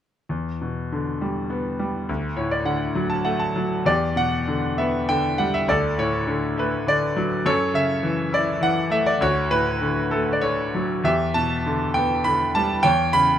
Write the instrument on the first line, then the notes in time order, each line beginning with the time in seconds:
grand piano
0.29 E2
0.61 B2
0.92 D3
1.21 G3
1.50 B3
1.79 G3
2.09 D2
2.37 A2 C#5
2.51 D5
2.65 D3 F#5
2.95 F#3
3.10 A5
3.25 A3 F#5
3.40 A5
3.56 F#3
3.85 E2 G4 D5
4.16 B2 F#5
4.48 D3
4.78 B3 E5
5.09 D3 G5
5.38 G3 F#5
5.54 E5
5.68 D2 A4 D5
5.98 A2 C#5
6.27 D3
6.58 A3 B4
6.87 D3 D5
7.17 F#3
7.46 F#2 A4 C#5
7.74 C#3 E5
8.03 E3
8.32 E4 D5
8.61 E3 F#5
8.90 A3 E5
9.06 D5
9.21 D2 F#4 C#5
9.51 A2 B4
9.82 D3
10.11 A3 A4
10.33 D5
10.41 D3 C#5
10.75 F#3
11.04 E2 G4 E5
11.34 B2 A5
11.66 D3
11.94 B3 G5
12.24 D3 B5
12.55 G3 A5
12.83 E2 C#5 G5
13.13 C#3 B5